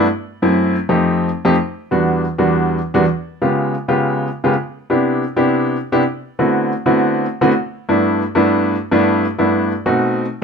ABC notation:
X:1
M:4/4
L:1/16
Q:1/4=161
K:G
V:1 name="Grand piano"
z4 [F,,A,CE]4 z [=F,,A,C_EG]4 z2 [F,,A,CEG] | z4 [E,,G,B,DF]4 z [E,,G,B,DF]4 z2 [E,,G,B,DF] | z4 [^C,^G,B,^E=G]4 z [C,^G,B,E=G]4 z2 [C,^G,B,E=G] | z4 [C,B,DEG]4 z [C,B,DEG]4 z2 [C,B,DEG] |
z4 [D,A,B,CEF]4 z [D,A,B,CEF]4 z2 [D,A,B,CEF] | z4 [G,,A,B,DE]4 z [G,,A,B,DE]4 z2 [G,,A,B,DE]- | [G,,A,B,DE]2 z2 [G,,A,B,DE]4 z [B,,A,C^DF]4 z3 |]